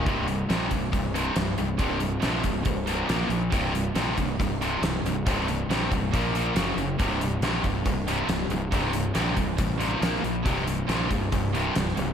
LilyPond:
<<
  \new Staff \with { instrumentName = "Distorted electric guitar" } { \clef bass \time 4/4 \key bes \lydian \tempo 4 = 138 <c, g, c>8 <c, g,>8 <c, g, c>8 <c, g,>8 <c, g,>8 <c, g, c>8 <c, g,>8 <c, g,>8 | <c, g, c>8 <c, g,>8 <c, g, c>8 <c, g,>8 <c, g,>8 <c, g, c>8 <bes, f bes>8 <bes, f>8 | <c, g, c>8 <c, g,>8 <c, g, c>8 <c, g,>8 <c, g,>8 <c, g, c>8 <c, g,>8 <c, g,>8 | <c, g, c>8 <c, g,>8 <c, g, c>8 <c, g,>8 <bes, f bes>8 <bes, f bes>8 <fis, cis fis>8 <fis, cis>8 |
<c, g, c>8 <c, g,>8 <c, g, c>8 <c, g,>8 <c, g,>8 <c, g, c>8 <c, g,>8 <c, g,>8 | <c, g, c>8 <c, g,>8 <c, g, c>8 <c, g,>8 <c, g,>8 <c, g, c>8 <bes, f bes>8 <bes, f>8 | <c, g, c>8 <c, g,>8 <c, g, c>8 <c, g,>8 <c, g,>8 <c, g, c>8 <c, g,>8 <c, g,>8 | }
  \new Staff \with { instrumentName = "Distorted electric guitar" } { \clef bass \time 4/4 \key bes \lydian <c, g, c>8 <c, g,>8 <c, g, c>8 <c, g,>8 <c, g,>8 <c, g, c>8 <c, g,>8 <c, g,>8 | <c, g, c>8 <c, g,>8 <c, g, c>8 <c, g,>8 <c, g,>8 <c, g, c>8 <bes, f bes>8 <bes, f>8 | <c, g, c>8 <c, g,>8 <c, g, c>8 <c, g,>8 <c, g,>8 <c, g, c>8 <c, g,>8 <c, g,>8 | <c, g, c>8 <c, g,>8 <c, g, c>8 <c, g,>8 <bes, f bes>8 <bes, f bes>8 <fis, cis fis>8 <fis, cis>8 |
<c, g, c>8 <c, g,>8 <c, g, c>8 <c, g,>8 <c, g,>8 <c, g, c>8 <c, g,>8 <c, g,>8 | <c, g, c>8 <c, g,>8 <c, g, c>8 <c, g,>8 <c, g,>8 <c, g, c>8 <bes, f bes>8 <bes, f>8 | <c, g, c>8 <c, g,>8 <c, g, c>8 <c, g,>8 <c, g,>8 <c, g, c>8 <c, g,>8 <c, g,>8 | }
  \new Staff \with { instrumentName = "Fingered electric bass" } { \clef bass \time 4/4 \key bes \lydian c,,4 bes,,8 c,,8 c,,4 c,,8 c,,8 | c,,4 bes,,8 c,,8 c,,4 bes,,8 bes,,8 | c,,4 bes,,8 c,,8 c,,4 c,,8 c,,8 | c,,4 bes,,8 c,,8 bes,,4 fis,,8 fis,,8 |
c,,4 bes,,8 c,,8 c,,4 c,,8 c,,8 | c,,4 bes,,8 c,,8 a,,4 bes,,8 bes,,8 | c,,4 bes,,8 c,,8 c,,4 c,,8 c,,8 | }
  \new DrumStaff \with { instrumentName = "Drums" } \drummode { \time 4/4 <hh bd>8 hh8 <hh sn>8 <hh bd>8 <hh bd>8 hh8 <hh sn>8 hh8 | <hh bd>8 hh8 <hh sn>8 <hh bd>8 <hh bd>8 hh8 <hh sn>8 hh8 | <hh bd>8 hh8 <hh sn>8 <hh bd>8 <hh bd>8 hh8 <hh sn>8 hh8 | <hh bd>8 hh8 <hh sn>8 <hh bd>8 <hh bd>8 hh8 <hh sn>8 hh8 |
<hh bd>8 hh8 <hh sn>8 <hh bd>8 <hh bd>8 hh8 <hh sn>8 hh8 | <hh bd>8 hh8 <hh sn>8 <hh bd>8 <hh bd>8 hh8 <hh sn>16 sn16 hh8 | <hh bd>8 hh8 <hh sn>8 <hh bd>8 <hh bd>8 hh8 <hh sn>16 sn16 hh8 | }
>>